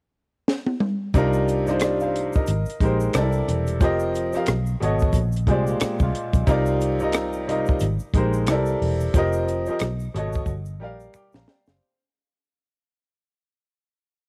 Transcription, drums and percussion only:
0.48 snare
0.66 high tom
0.80 mid tom
1.14 kick, closed hi-hat, shaker
1.33 shaker
1.48 closed hi-hat, shaker
1.67 cross-stick, shaker
1.80 finger snap, cross-stick, closed hi-hat, shaker
2.00 shaker
2.16 closed hi-hat
2.33 kick, shaker
2.46 closed hi-hat, shaker
2.66 shaker
2.70 closed hi-hat
2.80 kick, closed hi-hat
3.00 shaker
3.13 finger snap, cross-stick, closed hi-hat, shaker
3.32 shaker
3.48 cross-stick, closed hi-hat
3.67 closed hi-hat, shaker
3.81 kick, closed hi-hat, shaker
3.99 shaker
4.15 closed hi-hat, shaker
4.33 cross-stick, shaker
4.46 finger snap, cross-stick, closed hi-hat, shaker
4.66 shaker
4.82 closed hi-hat
4.99 kick, shaker
5.13 kick, closed hi-hat, shaker
5.32 shaker
5.36 closed hi-hat
5.47 kick, closed hi-hat
5.67 shaker
5.80 finger snap, cross-stick, closed hi-hat, shaker
5.99 kick, shaker
6.15 closed hi-hat
6.33 kick, closed hi-hat, shaker
6.47 kick, closed hi-hat, shaker
6.66 shaker
6.81 closed hi-hat, shaker
7.00 shaker
7.12 finger snap, cross-stick, closed hi-hat, shaker
7.33 shaker
7.49 closed hi-hat
7.66 kick, shaker
7.80 closed hi-hat, shaker
7.99 shaker
8.14 kick, closed hi-hat
8.33 shaker
8.46 finger snap, cross-stick, closed hi-hat, shaker
8.66 shaker
8.82 open hi-hat
9.00 shaker
9.14 kick, closed hi-hat, shaker
9.33 shaker
9.48 closed hi-hat, shaker
9.66 shaker
9.79 finger snap, cross-stick, closed hi-hat, shaker
10.00 shaker
10.16 closed hi-hat
10.33 kick, shaker
10.46 kick, shaker
10.65 shaker
11.00 shaker
11.14 finger snap, shaker
11.32 snare, shaker
11.48 snare
11.66 snare, shaker

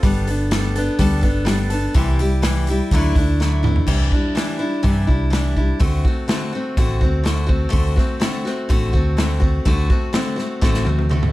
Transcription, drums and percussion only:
0.03 kick, open hi-hat
0.28 open hi-hat
0.51 snare, open hi-hat
0.76 open hi-hat
0.99 kick, open hi-hat
1.23 kick, open hi-hat
1.46 snare, open hi-hat
1.70 open hi-hat
1.94 kick, open hi-hat
2.19 open hi-hat
2.43 snare, open hi-hat
2.67 open hi-hat
2.91 kick, open hi-hat
3.15 kick, open hi-hat
3.41 snare
3.64 mid tom
3.76 floor tom
3.87 kick, crash
4.12 kick
4.37 snare, open hi-hat
4.84 kick, open hi-hat
5.08 kick
5.33 snare, open hi-hat
5.56 kick
5.80 kick, open hi-hat
6.05 kick
6.29 snare, open hi-hat
6.77 kick, open hi-hat
7.01 kick
7.25 snare, open hi-hat
7.49 kick
7.73 kick, open hi-hat
7.98 kick, snare
8.21 snare, open hi-hat
8.46 snare
8.70 kick, open hi-hat
8.94 kick
9.18 snare, open hi-hat
9.42 kick
9.66 kick, open hi-hat
9.90 kick
10.13 snare, open hi-hat
10.39 snare
10.62 kick, snare
10.74 snare
10.86 high tom
10.99 high tom
11.11 mid tom
11.23 mid tom

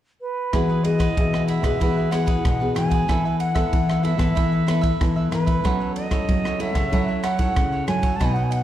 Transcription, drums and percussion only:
0.53 kick, cross-stick, ride
0.85 ride
1.00 kick, cross-stick, ride
1.17 kick, ride
1.34 cross-stick
1.48 ride
1.64 kick, cross-stick, ride
1.81 kick, ride
2.12 cross-stick, ride
2.27 kick, ride
2.45 kick, cross-stick, ride
2.76 cross-stick, ride
2.91 kick, ride
3.09 kick, cross-stick, ride
3.40 ride
3.55 kick, cross-stick, ride
3.73 kick, ride
3.90 cross-stick
4.05 ride
4.19 kick, cross-stick, ride
4.37 kick, ride
4.68 cross-stick, ride
4.83 kick, ride
5.01 kick, cross-stick, ride
5.32 cross-stick, ride
5.47 kick, ride
5.65 kick, cross-stick, ride
5.96 ride
6.11 kick, cross-stick, ride
6.29 kick, ride
6.45 cross-stick
6.60 ride
6.75 kick, cross-stick, ride
6.93 kick, ride
7.24 cross-stick, ride
7.39 kick, ride
7.56 kick, cross-stick, ride
7.88 cross-stick, ride
8.03 kick, ride
8.21 kick, cross-stick, ride
8.52 ride

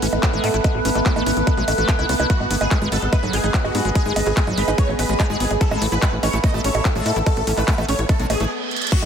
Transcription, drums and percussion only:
0.02 open hi-hat
0.13 closed hi-hat, high bongo
0.23 kick, clap, closed hi-hat
0.44 open hi-hat, high bongo
0.54 closed hi-hat
0.64 kick, closed hi-hat, high bongo
0.85 open hi-hat
0.95 clap, closed hi-hat, high bongo
1.06 kick, clap, closed hi-hat
1.16 high bongo
1.26 open hi-hat
1.37 closed hi-hat
1.47 kick, closed hi-hat, high bongo
1.68 open hi-hat, high bongo
1.78 closed hi-hat
1.89 kick, clap, closed hi-hat
1.99 high bongo
2.09 open hi-hat
2.20 closed hi-hat, high bongo
2.30 kick, closed hi-hat
2.40 high bongo
2.51 open hi-hat
2.61 closed hi-hat, high bongo
2.71 kick, clap, closed hi-hat
2.92 open hi-hat, high bongo
3.02 closed hi-hat
3.13 kick, closed hi-hat, high bongo
3.33 open hi-hat
3.44 closed hi-hat, high bongo
3.54 kick, clap, closed hi-hat
3.64 high bongo
3.75 open hi-hat
3.85 closed hi-hat
3.95 kick, closed hi-hat, high bongo
4.16 open hi-hat, high bongo
4.26 clap, closed hi-hat
4.37 kick, clap, closed hi-hat
4.47 high bongo
4.58 open hi-hat
4.68 closed hi-hat, high bongo
4.78 kick, closed hi-hat
4.99 open hi-hat, high bongo
5.09 closed hi-hat
5.20 kick, clap, closed hi-hat, high bongo
5.40 open hi-hat
5.51 closed hi-hat, high bongo
5.61 kick, closed hi-hat
5.71 high bongo
5.82 open hi-hat
5.92 closed hi-hat
6.02 kick, clap, closed hi-hat, high bongo
6.23 open hi-hat, high bongo
6.33 closed hi-hat
6.44 kick, closed hi-hat
6.54 high bongo
6.64 open hi-hat
6.75 closed hi-hat, high bongo
6.85 kick, clap, closed hi-hat
7.06 open hi-hat, high bongo
7.16 closed hi-hat
7.26 kick, closed hi-hat, high bongo
7.37 closed hi-hat
7.47 open hi-hat
7.58 clap, closed hi-hat, high bongo
7.68 kick, clap, closed hi-hat
7.78 closed hi-hat, high bongo
7.89 open hi-hat
7.99 closed hi-hat
8.09 kick, closed hi-hat, high bongo
8.20 closed hi-hat
8.30 open hi-hat, high bongo
8.40 closed hi-hat
8.71 closed hi-hat
8.76 closed hi-hat
8.82 closed hi-hat
8.87 closed hi-hat
8.92 kick, crash
9.02 closed hi-hat, high bongo

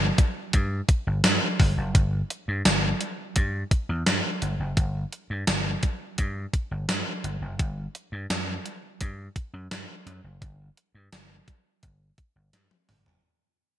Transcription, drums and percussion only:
0.18 kick, closed hi-hat
0.53 kick, closed hi-hat
0.89 kick, closed hi-hat
1.24 snare, closed hi-hat, tambourine
1.60 kick, open hi-hat
1.95 kick, closed hi-hat
2.30 closed hi-hat
2.65 snare, closed hi-hat, tambourine
3.01 closed hi-hat
3.36 kick, closed hi-hat
3.71 kick, closed hi-hat
4.06 snare, closed hi-hat, tambourine
4.42 closed hi-hat
4.77 kick, closed hi-hat
5.12 closed hi-hat
5.47 snare, closed hi-hat, tambourine
5.83 kick, closed hi-hat
6.18 kick, closed hi-hat
6.53 kick, closed hi-hat
6.89 snare, closed hi-hat, tambourine
7.24 closed hi-hat
7.59 kick, closed hi-hat
7.95 closed hi-hat
8.30 snare, closed hi-hat, tambourine
8.66 closed hi-hat
9.01 kick, closed hi-hat
9.36 kick, closed hi-hat
9.71 snare, closed hi-hat, tambourine
10.07 closed hi-hat
10.42 kick, closed hi-hat
10.77 closed hi-hat
11.12 snare, closed hi-hat, tambourine
11.48 kick, closed hi-hat
11.83 kick, closed hi-hat
12.18 kick, closed hi-hat
12.53 snare, closed hi-hat
12.71 high tom
12.89 mid tom, open hi-hat
13.06 floor tom

